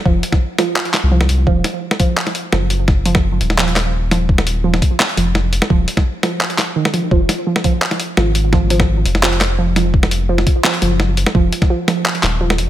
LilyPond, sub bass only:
\new Staff \with { instrumentName = "Sub bass" } { \clef bass \time 4/4 \key f \phrygian \tempo 4 = 170 f,,8 r2 r16 c,8. c,8 | ees,,8 r2 r8 ges,,4~ | ges,,4. ees,,2~ ees,,8~ | ees,,4. r4 f,,4~ f,,16 r16 |
ees,,8 r2. r8 | f,,8 r2 r8 aes,,4~ | aes,,4. f,,2~ f,,8~ | f,,4. r4 ges,,4~ ges,,16 r16 |
f,,8 r2 ees,,4 f,,8 | }